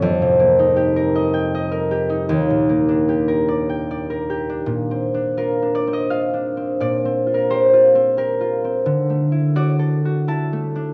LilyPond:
\new Staff \with { instrumentName = "Harp" } { \time 3/4 \key bes \major \tempo 4 = 84 << { r2. | r2. | r4 bes'8 d''16 ees''16 f''4 | d''8. bes'16 c''4 bes'4 |
r4 d''4 a''4 | } \\ { f,16 c16 bes16 ees'16 g'16 bes'16 ees''16 g''16 ees''16 bes'16 g'16 ees'16 | ees,16 bes,16 bes16 d'16 g'16 bes'16 d''16 g''16 d''16 bes'16 g'16 d'16 | \tuplet 3/2 { bes,8 c'8 d'8 f'8 d'8 c'8 f'8 d'8 c'8 } | \tuplet 3/2 { bes,8 c'8 f'8 g'8 f'8 c'8 g'8 f'8 c'8 } |
\tuplet 3/2 { d8 a8 e'8 fis'8 a'8 fis'8 e'8 a8 d'8 } | } >> }